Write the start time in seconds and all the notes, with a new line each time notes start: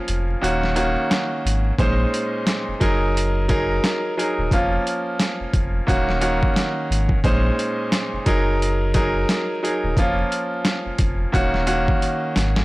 Already playing: F3 A#3 C#4 F4
0.08 F1, closed hi-hat
0.42 D#1 D#3 A#3 C#4 F#4, closed hi-hat
0.63 snare
0.75 D#3 A#3 C#4 F#4, closed hi-hat
1.11 snare, closed hi-hat
1.45 G#1, closed hi-hat
1.78 A#1 A#2 G#3 C#4 D#4 C5, kick, closed hi-hat
2.14 closed hi-hat
2.47 snare, closed hi-hat
2.68 F#1
2.80 F#1 F#3 D#4 G#4 A#4, kick, closed hi-hat
3.17 closed hi-hat
3.48 F#3 D#4 G#4 A#4, kick, closed hi-hat
3.84 snare, closed hi-hat
4.17 F#3 D#4 G#4 A#4, closed hi-hat
4.38 D#1
4.51 F1 F3 A#3 C#4 F4, kick, closed hi-hat
4.87 closed hi-hat
5.20 snare, closed hi-hat
5.40 F1
5.54 F1, kick, closed hi-hat
5.87 D#1 D#3 A#3 C#4 F#4, kick, closed hi-hat
6.09 snare
6.21 D#3 A#3 C#4 F#4, closed hi-hat
6.43 kick
6.56 snare, closed hi-hat
6.90 G#1, closed hi-hat
7.09 kick
7.24 A#1 A#2 G#3 C#4 D#4 C5, kick, closed hi-hat
7.59 closed hi-hat
7.92 snare, closed hi-hat
8.13 F#1
8.26 F#1 F#3 D#4 G#4 A#4, kick, closed hi-hat
8.62 closed hi-hat
8.94 F#3 D#4 G#4 A#4, kick, closed hi-hat
9.29 snare, closed hi-hat
9.63 F#3 D#4 G#4 A#4, closed hi-hat
9.84 D#1
9.97 F1 F3 A#3 C#4 F4, kick, closed hi-hat
10.32 closed hi-hat
10.65 snare, closed hi-hat
10.86 F1
10.99 F1, kick, closed hi-hat
11.32 D#1 D#3 A#3 C#4 F#4, kick, closed hi-hat
11.54 snare
11.66 D#3 A#3 C#4 F#4, closed hi-hat
11.88 kick
12.02 closed hi-hat
12.36 G#1, snare, closed hi-hat
12.56 snare